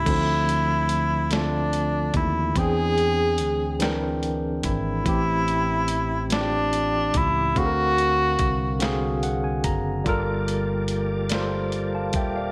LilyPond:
<<
  \new Staff \with { instrumentName = "Tine electric piano" } { \time 6/8 \key d \minor \tempo 4. = 48 << { r2. | r2. | r2. | r2 fis''16 gis''16 ais''8 |
r2 r16 <f'' a''>16 <e'' g''>16 <d'' f''>16 | } \\ { <d f a c'>4 r8 <d a c' f'>4 r8 | <e bis d' gis' g''>4 r8 <e bis d' bes' g''>4 r8 | <a, e c' g'>4 r8 <a, e c' f' g'>4 r8 | <d c' fis' gis' ais' eis''>4 r8 <d c' fis' gis' eis''>4 r8 |
<g f' a' bes'>4 r8 <g f' a' c''>4 r8 | } >> }
  \new Staff \with { instrumentName = "Tonewheel organ" } { \time 6/8 \key d \minor r2. | r2. | r2. | r2. |
<g bes f' d'' a''>2. | }
  \new Staff \with { instrumentName = "Tenor saxophone" } { \time 6/8 \key d \minor e'4. d'4 e'8 | gis'2 r8 e'8~ | e'4. d'4 e'8 | fis'2 r4 |
r2. | }
  \new Staff \with { instrumentName = "Fingered electric bass" } { \clef bass \time 6/8 \key d \minor d,2~ d,8 ees,8 | e,4 d,4. gis,,8 | a,,2~ a,,8 cis,8 | d,4 c,4. fis,,8 |
g,,2~ g,,8 ees,,8 | }
  \new DrumStaff \with { instrumentName = "Drums" } \drummode { \time 6/8 <cymc hh bd>8 hh8 hh8 <hh sn>8 hh8 <hh bd>8 | <hh bd>8 hh8 hh8 <hh sn>8 hh8 <hh bd>8 | <hh bd>8 hh8 hh8 <hh sn>8 hh8 <hh bd>8 | <hh bd>8 hh8 <hh bd>8 <hh sn>8 hh8 <hh bd>8 |
<hh bd>8 hh8 hh8 <hh sn>8 hh8 <hh bd>8 | }
>>